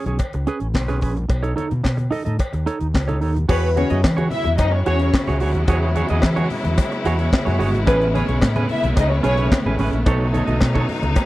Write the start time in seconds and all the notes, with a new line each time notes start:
0.06 B1 C#4 G#4 C#5, closed hi-hat, high conga
0.19 muted clean electric guitar stroke, kick, closed hi-hat, cowbell, muted conga
0.33 C#2, muted clean electric guitar stroke, closed hi-hat
0.47 C#4 G#4 B4, closed hi-hat
0.60 A1, muted clean electric guitar stroke, closed hi-hat
0.74 B1, muted clean electric guitar stroke, kick, snare, clap, cowbell, muted conga, high conga
0.88 C#4 G#4 B4, snare, closed hi-hat, high conga, low conga
1.01 A#1 C#4 G#4 B4, kick, open hi-hat, muted conga
1.16 muted clean electric guitar stroke, closed hi-hat, low conga
1.29 B1, muted clean electric guitar stroke, kick, closed hi-hat, cowbell
1.43 D#4 A4 C#5, closed hi-hat
1.56 D#4 A4 C#5, closed hi-hat, muted conga, high conga
1.70 B2, muted clean electric guitar stroke, closed hi-hat, high conga
1.83 B2, muted clean electric guitar stroke, kick, snare, clap, cowbell
1.97 muted clean electric guitar stroke, closed hi-hat, high conga
2.11 D#4 A4 D#5, open hi-hat, muted conga, low conga
2.25 A2 D#4 A4 D#5, closed hi-hat, high conga
2.39 muted clean electric guitar stroke, kick, closed hi-hat, cowbell
2.53 D#2, muted clean electric guitar stroke, closed hi-hat
2.66 D#4 A4 C#5, closed hi-hat, muted conga
2.80 D#2, muted clean electric guitar stroke, closed hi-hat
2.94 C#2, muted clean electric guitar stroke, kick, snare, clap, cowbell, high conga
3.08 D#4 A4 C#5, closed hi-hat, high conga, low conga
3.21 D#2 D#4 A4 C#5, open hi-hat, muted conga
3.36 muted clean electric guitar stroke, closed hi-hat, low conga
3.49 E2 C#3 F#3 G#3 B3 E4 F#4 G#4 B4 C#5, kick, crash, cowbell
3.63 closed hi-hat
3.76 C#4 F#4 G#4 C#5, closed hi-hat, high conga
3.90 F#2 F#4 G#4 D#5, closed hi-hat, high conga
4.04 E3, muted clean electric guitar stroke, kick, snare, clap, cowbell, muted conga
4.17 F#4 G#4 C#5, closed hi-hat, high conga
4.31 E4 E5, muted clean electric guitar stroke, open hi-hat, low conga
4.44 E2, muted clean electric guitar stroke, closed hi-hat, high conga
4.58 F#2 D#4 D#5, muted clean electric guitar stroke, kick, closed hi-hat, cowbell, muted conga
4.72 C#4 C#5, muted clean electric guitar stroke
4.86 E2 C#4 F#4 G#4 C#5, closed hi-hat, muted conga
4.99 F#4 G#4 C#5, closed hi-hat
5.13 muted clean electric guitar stroke, kick, snare, clap, cowbell, muted conga, high conga
5.27 C#2 F#4 G#4 C#5, snare, high conga, low conga
5.40 D2 F#4 G#4 C#5, open hi-hat, muted conga
5.54 D#2, muted clean electric guitar stroke, closed hi-hat
5.67 E2 F#4 G#4 C#5, kick, closed hi-hat, cowbell, muted conga
5.95 F#4 G#4 C#5, closed hi-hat, high conga
6.08 E2 F#4 G#4 D#5, closed hi-hat, high conga
6.22 E3, kick, snare, clap, cowbell, muted conga
6.36 F#4 G#4 C#5, closed hi-hat, high conga
6.50 muted clean electric guitar stroke, open hi-hat, muted conga, low conga
6.64 E2, muted clean electric guitar stroke, closed hi-hat, high conga
6.77 muted clean electric guitar stroke, kick, closed hi-hat, cowbell, muted conga
6.92 muted clean electric guitar stroke, closed hi-hat
7.05 E2 F#4 G#4 C#5, closed hi-hat, muted conga
7.18 F#4 G#4 C#5, closed hi-hat
7.32 muted clean electric guitar stroke, kick, snare, clap, cowbell, muted conga, high conga
7.45 F#2 F#4 G#4 C#5, snare, high conga, low conga
7.59 G1 F#4 G#4 C#5, open hi-hat, muted conga
7.73 G#1, muted clean electric guitar stroke, closed hi-hat
7.86 A1 C#3 A3 B3 C#4 G#4 B4, kick, closed hi-hat, cowbell, muted conga
8.01 closed hi-hat
8.14 C#4 G#4 B4 C#5, closed hi-hat, high conga
8.28 B1 C#4 G#4 C#5, closed hi-hat, high conga
8.41 A2, muted clean electric guitar stroke, kick, snare, clap, cowbell, muted conga
8.55 C#4 G#4 B4, closed hi-hat, high conga
8.69 E4 E5, muted clean electric guitar stroke, open hi-hat, low conga
8.83 B1, muted clean electric guitar stroke, closed hi-hat, high conga
8.96 C#2 D#4 D#5, muted clean electric guitar stroke, kick, closed hi-hat, cowbell, muted conga
9.10 C#4 C#5, muted clean electric guitar stroke
9.23 B1 C#4 G#4 B4 C#5, closed hi-hat, muted conga
9.37 C#4 G#4 B4, closed hi-hat
9.52 kick, snare, clap, cowbell, muted conga, high conga
9.66 A1 C#4 G#4 B4, high conga, low conga
9.78 A1 C#4 G#4 B4, open hi-hat, muted conga
9.93 A#1, muted clean electric guitar stroke, closed hi-hat
10.06 B1 C#3 F#3 D#4 A4 C#5, kick, closed hi-hat, cowbell
10.33 D#4 A4 C#5, closed hi-hat, muted conga, high conga
10.47 B1 D#4 A4 D#5, closed hi-hat, high conga
10.61 B2, muted clean electric guitar stroke, kick, snare, clap, cowbell, muted conga
10.75 D#4 A4 C#5, kick, high conga
10.89 muted clean electric guitar stroke, open hi-hat, muted conga, low conga
11.02 C#2, muted clean electric guitar stroke, closed hi-hat, high conga
11.15 muted clean electric guitar stroke, kick, closed hi-hat, cowbell, muted conga